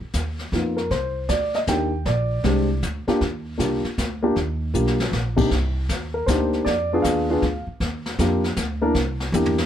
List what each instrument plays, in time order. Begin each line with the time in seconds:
0.01 muted upright bass stroke
0.13 upright bass D#2, kick, snare, hi-hat pedal
0.39 snare
0.52 upright bass F2, grand piano A#3 B3 D#4 F4, kick, snare
0.77 grand piano A#4, snare
0.91 upright bass C2, grand piano C5, brush sweep, kick, snare
1.29 upright bass D2, grand piano D5, kick, snare, hi-hat pedal
1.54 grand piano D#5, snare
1.67 upright bass D#2, grand piano A#3 D4 D#4 G4 G5, kick, snare, hi-hat pedal
2.05 upright bass A#1, grand piano D5, brush sweep, kick, snare
2.44 upright bass C2, grand piano G#3 C4 D4 G4, kick, snare
2.82 upright bass D2, kick, snare, hi-hat pedal
3.07 grand piano A#3 D4 F4 G4, muted upright bass stroke, snare
3.21 upright bass D#2, brush sweep, kick, snare
3.58 upright bass C2, grand piano A#3 D4 F4 G4, kick, snare, hi-hat pedal
3.84 muted upright bass stroke, snare
3.98 upright bass D2, kick, snare, hi-hat pedal
4.23 grand piano A#3 D4 F4 G4
4.36 upright bass D#2, brush sweep, kick, snare
4.74 upright bass B1, grand piano A#3 D4 F4 G4, hi-hat pedal
4.87 snare
5.00 snare
5.12 upright bass A#1, snare
5.36 grand piano C3 A#3 D4 D#4 G4, kick, crash
5.51 upright bass C2, brush sweep, kick, snare
5.89 upright bass D#2, kick, snare, hi-hat pedal
6.14 grand piano A#4
6.26 upright bass D2, grand piano A#3 D4 D#4 G4 C5, kick, snare, hi-hat pedal
6.53 snare
6.65 upright bass F2, grand piano D5, brush sweep, kick, snare
6.93 grand piano B3 D4 F4 G#4
7.02 upright bass D#2, grand piano F5, kick, snare, hi-hat pedal
7.30 grand piano B3 D4 F4 G#4
7.42 upright bass D2, kick, snare
7.67 muted upright bass stroke
7.80 upright bass D#2, brush sweep, kick, snare
8.06 snare
8.19 upright bass F2, grand piano A#3 D4 F4 G4, kick, snare, hi-hat pedal
8.44 snare
8.56 upright bass D2, kick, snare, hi-hat pedal
8.82 grand piano A#3 D4 E4 A#4
8.94 upright bass C2, brush sweep, kick, snare
9.20 snare
9.32 upright bass E2, grand piano A#3 D4 E4 G4, floor tom, hi-hat pedal
9.46 floor tom
9.58 snare